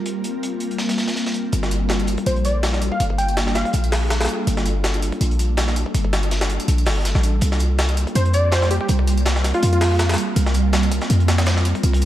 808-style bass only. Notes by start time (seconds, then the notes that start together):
1.53 G1
2.26 A#1
3.00 G1
3.74 A#1
4.47 G1
5.21 A#1
5.94 G1
6.68 A#1
6.87 G1
7.15 A1
7.42 C2
8.15 F2
8.89 C2
9.63 F2
10.36 C2
11.10 F2
11.84 C2